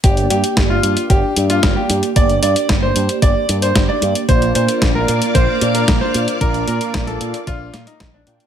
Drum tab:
HH |xxxxx-xxx-xxx-xx|xxxxx-xxx-xxx-xx|xxxxx-xxx-xxx-xx|xxxxxxxxx-xxx-xx|
SD |----o-------o---|----o-------o---|----o-------o---|----o-----o-o---|
BD |o---o---o---o---|o---o---o---o---|o---o---o---o---|o---o---o---o---|